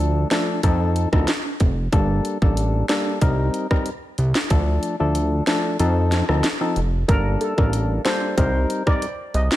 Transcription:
Already playing: D2 F3 A3 D4 A4
0.31 F3 A3 D4 A4, snare, closed hi-hat
0.63 F2 F3 C4 D#4 A4, kick, closed hi-hat
0.96 closed hi-hat
1.12 D2 F3 C4 D#4 A4, kick, cross-stick
1.28 snare, closed hi-hat
1.60 F1, kick, closed hi-hat
1.92 G1 G3 A#3 D4 A4, kick, closed hi-hat
2.25 closed hi-hat
2.42 A1 G3 A#3 D4 A4, kick
2.57 closed hi-hat
2.89 G3 A#3 D4 A4, snare, closed hi-hat
3.21 C2 G3 C4 D#4 A#4, kick, closed hi-hat
3.54 closed hi-hat
3.71 G3 C4 D#4 A#4, kick, cross-stick
3.86 closed hi-hat
4.18 C2, closed hi-hat
4.35 snare
4.50 D2 F3 A3 D4 A4, kick, closed hi-hat
4.83 closed hi-hat
5.00 D2 F3 A3 D4 A4
5.15 closed hi-hat
5.47 F3 A3 D4 A4, snare, closed hi-hat
5.79 F2 F3 C4 D#4 A4, closed hi-hat
6.12 snare, closed hi-hat
6.29 D2 F3 C4 D#4 A4, cross-stick
6.44 snare, closed hi-hat
6.61 F3 C4 D#4 A4
6.76 F1, closed hi-hat
7.08 G1 G3 A#3 D4 A4 A#4, kick, closed hi-hat
7.41 A4, closed hi-hat
7.57 A1 G3 A#3 D4 A4 A#4, kick
7.73 closed hi-hat
8.05 G3 A#3 D4 A4 C5, snare, closed hi-hat
8.37 C2 G3 C4 D#4 A#4 C5, kick, closed hi-hat
8.70 closed hi-hat
8.86 G3 C4 D#4 A#4 D5, kick, cross-stick
9.02 closed hi-hat
9.34 C2 D#5, closed hi-hat
9.52 snare

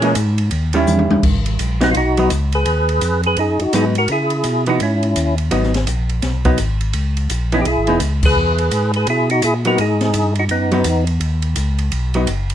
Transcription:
Already playing: A#2 C#4 G#4 A#4 C#5
0.02 E3 G#3 C#4, ride
0.15 G#2, hi-hat pedal, ride
0.38 ride
0.51 D#2, ride
0.73 D#3 G3 C#4 E4, ride
0.87 E2, hi-hat pedal, high tom
0.99 high tom
1.10 E2, high tom
1.23 G#1, kick, crash
1.46 ride
1.59 A#1, hi-hat pedal, ride
1.81 F#3 B3 D#4, snare, ride
1.91 B1 F4, ride
1.97 D#4 F#4
2.17 F#3 B3 D#4, ride
2.30 C#2, hi-hat pedal, ride
2.52 G#4 B4, ride
2.65 D#2, ride
2.89 ride
3.01 F2, hi-hat pedal, ride
3.23 G#4 B4, ride
3.37 F#2 D#4 G#4, ride
3.60 F#2 D#4 F#4, ride
3.73 G#2 F#3 B3 D#4 G#4, hi-hat pedal, ride
3.95 F#4 A#4, ride
4.08 C#3 E4, ride
4.12 G#4
4.30 ride
4.44 B2, hi-hat pedal, ride
4.66 E3 B3 D#4 F#4, ride
4.80 G#2 C#4 E4, ride
5.03 ride
5.16 D#2, hi-hat pedal, ride
5.38 ride
5.51 G#1 F#3 B3 D#4, ride
5.63 snare
5.74 snare, ride
5.87 A#1, hi-hat pedal, ride
6.09 ride
6.22 B1, snare, ride
6.45 F#3 B3 D#4, kick, ride
6.58 G#1, hi-hat pedal, ride
6.81 ride
6.93 C#2, ride
7.17 ride
7.30 A#1, hi-hat pedal, ride
7.52 E3 B3 C#4 D#4 E4, ride
7.61 G4, ride
7.66 B1 E4 G#4
7.78 G#1
7.87 E1 E3 B3 D#4, ride
8.00 C#2, hi-hat pedal, ride
8.23 G#4 B4, kick, crash
8.36 E2
8.58 ride
8.71 G#2, hi-hat pedal, ride
8.94 G#4 B4, ride
9.07 B2 E4 G#4, ride
9.30 D#4 F#4, ride
9.42 A#2 E4 G#4, hi-hat pedal, ride
9.65 F#3 B3 D#4 F#4 A#4, ride
9.78 G#2 D#4 G#4, ride
10.01 snare, ride
10.14 G2, hi-hat pedal, ride
10.35 D#4, ride
10.40 F#4
10.49 F#2 B3 D#4, ride
10.71 F#3 B3 D#4, ride
10.84 E2, hi-hat pedal, ride
11.07 ride
11.20 D#2, ride
11.42 ride
11.56 C#2, hi-hat pedal, ride
11.79 ride
11.92 B1, ride
12.14 F#3 B3 D#4, ride
12.27 F#1, hi-hat pedal, ride
12.50 ride

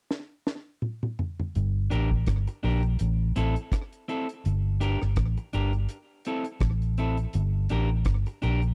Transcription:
0.11 snare
0.47 snare
0.82 mid tom
1.03 mid tom
1.19 floor tom
1.40 floor tom
1.55 G1, closed hi-hat
1.90 A1 D4 G4 A#4, closed hi-hat
2.11 kick
2.26 G1, kick, cross-stick, closed hi-hat
2.47 muted clean electric guitar stroke, closed hi-hat
2.63 A#1 D4 G4 A#4, open hi-hat
2.83 closed hi-hat
2.99 A1, closed hi-hat
3.36 A1 C4 E4 A4, closed hi-hat
3.56 closed hi-hat
3.72 kick, cross-stick, closed hi-hat
3.93 closed hi-hat
4.08 C4 E4 A4, closed hi-hat
4.29 closed hi-hat
4.45 G1, closed hi-hat
4.80 D4 G4 A#4, closed hi-hat
5.02 G1, cross-stick
5.16 A1, kick, cross-stick, closed hi-hat
5.37 muted clean electric guitar stroke, closed hi-hat
5.53 G1 D4 G4 A#4, closed hi-hat
5.73 closed hi-hat
5.89 closed hi-hat
6.25 C4 E4 A4, closed hi-hat
6.44 closed hi-hat
6.60 A1, kick, cross-stick, closed hi-hat
6.82 closed hi-hat
6.97 C4 E4 A4, closed hi-hat
7.17 closed hi-hat
7.33 G1, closed hi-hat
7.69 A1 D4 G4 A#4, closed hi-hat
8.05 G1, kick, cross-stick, closed hi-hat
8.26 muted clean electric guitar stroke, closed hi-hat
8.42 A#1 D4 G4 A#4, closed hi-hat
8.62 closed hi-hat

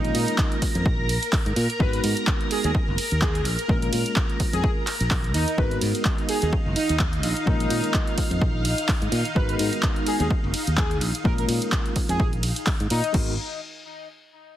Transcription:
Already playing: G#3 A#3 C#4 D#4 F4 A#4 A#5
0.05 closed hi-hat
0.15 A#2, open hi-hat, ride
0.28 closed hi-hat
0.38 kick, clap
0.52 closed hi-hat
0.62 kick, open hi-hat, ride
0.75 F2, closed hi-hat
0.86 A#1, kick
1.09 open hi-hat, ride
1.23 closed hi-hat
1.33 kick, clap, open hi-hat
1.46 G#2, closed hi-hat
1.56 A#2, open hi-hat, ride
1.70 closed hi-hat
1.79 G#1 G#3 B3 D#4 F#4 A#4 B4, kick
1.93 closed hi-hat
2.04 G#2, open hi-hat, ride
2.17 closed hi-hat
2.27 kick, clap
2.41 closed hi-hat
2.51 G#4, open hi-hat, ride
2.64 D#2 G#4, closed hi-hat
2.75 kick
2.88 F#1
2.98 open hi-hat, ride
3.11 D#2, closed hi-hat
3.22 G#4, kick, clap
3.35 closed hi-hat
3.45 A#1, open hi-hat, ride
3.59 closed hi-hat
3.68 A#1 G#3 A#3 C#4 F4 A#4, kick
3.82 A#4, closed hi-hat
3.93 A#2, open hi-hat, ride
4.06 closed hi-hat
4.16 kick, clap
4.30 closed hi-hat
4.40 kick, open hi-hat, ride
4.53 F2 G#4, closed hi-hat
4.64 kick
4.87 clap, open hi-hat, ride
5.00 A#1, closed hi-hat
5.11 kick, clap, open hi-hat
5.24 closed hi-hat
5.34 D#2 D#4, open hi-hat, ride
5.48 closed hi-hat
5.57 G#1 G#3 B3 D#4 F#4 A#4 B4 F5, kick
5.71 closed hi-hat
5.81 G#2, open hi-hat, ride
5.95 closed hi-hat
6.05 kick, clap
6.18 closed hi-hat
6.29 G#4, open hi-hat, ride
6.42 D#2 G#4, closed hi-hat
6.53 muted fingered electric bass stroke, kick
6.66 F#1
6.76 D#4, open hi-hat, ride
6.89 D#2, closed hi-hat
6.99 kick, clap
7.13 closed hi-hat
7.23 A#1, open hi-hat, ride
7.37 closed hi-hat
7.46 A#1 G#3 A#3 C#4 D#4 F4 A#4, kick
7.60 closed hi-hat
7.70 A#2, open hi-hat, ride
7.84 closed hi-hat
7.94 kick, clap
8.07 closed hi-hat
8.18 kick, open hi-hat, ride
8.31 F2, closed hi-hat
8.41 A#1, kick
8.65 open hi-hat, ride
8.78 closed hi-hat
8.89 kick, clap, open hi-hat
9.02 G#2, closed hi-hat
9.12 A#2, open hi-hat, ride
9.25 closed hi-hat
9.35 G#1 G#3 B3 D#4 F#4 A#4 B4, kick
9.49 closed hi-hat
9.59 G#2, open hi-hat, ride
9.73 closed hi-hat
9.83 kick, clap
9.96 closed hi-hat
10.06 G#4, open hi-hat, ride
10.20 D#2 G#4, closed hi-hat
10.30 muted fingered electric bass stroke, kick
10.44 F#1
10.54 open hi-hat, ride
10.67 D#2, closed hi-hat
10.77 G#4, kick, clap
10.91 closed hi-hat
11.01 A#1, open hi-hat, ride
11.15 closed hi-hat
11.24 A#1 G#3 A#3 C#4 F4 A#4, kick
11.38 A#4, closed hi-hat
11.48 A#2, open hi-hat, ride
11.62 closed hi-hat
11.72 kick, clap
11.86 closed hi-hat
11.96 kick, open hi-hat, ride
12.09 F2 G#4, closed hi-hat
12.20 A#1, kick
12.33 closed hi-hat
12.43 open hi-hat, ride
12.56 closed hi-hat
12.67 kick, clap, open hi-hat
12.80 G#2, closed hi-hat
12.90 A#2 D#4, open hi-hat, ride
13.04 closed hi-hat
13.13 G#1 G#3 B3 D#4 F#4 A#4, kick, crash

